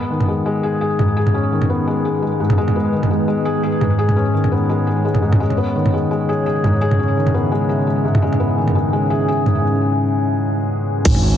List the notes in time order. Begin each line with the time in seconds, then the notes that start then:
Already playing: G#3 B3 B4 D#5
0.06 D#3 G#4
0.20 mid tom
0.28 G#3
0.46 G#3
0.63 G#4
0.81 G#4
0.99 G#2, mid tom
1.17 G#4
1.27 mid tom
1.34 C#4
1.52 D#3
1.62 mid tom
1.70 B3
1.87 G#3
2.05 G#4
2.22 G#3
2.40 G#2
2.50 mid tom
2.58 G#3
2.68 mid tom
2.76 B3
2.93 D#3
3.03 mid tom
3.11 G#3 C#5
3.28 G#3
3.45 G#4
3.63 G#4
3.81 G#2, mid tom
3.99 G#4
4.09 mid tom
4.16 C#4
4.34 D#3
4.44 mid tom
4.52 B3
4.69 G#3
4.87 G#4
5.05 G#3
5.15 mid tom
5.22 G#2
5.33 mid tom
5.40 G#3 C#4
5.50 mid tom
5.58 B3
5.75 D#3
5.84 E5, mid tom
5.94 G#3
6.04 G#5
6.11 G#3
6.29 G#4
6.46 G#4
6.64 G#2, mid tom
6.81 G#4
6.91 mid tom
6.99 C#4
7.17 D#3
7.27 mid tom
7.34 B3
7.52 G#3
7.69 G#4
7.87 G#3
8.05 G#2
8.15 mid tom
8.22 G#3
8.33 mid tom
8.40 B3
8.58 D#3
8.68 mid tom
8.75 G#3
8.93 G#3
9.10 G#4
9.28 G#4
9.46 G#2, mid tom
11.05 G#1, kick, closed hi-hat, crash, sub drop
11.15 mid tom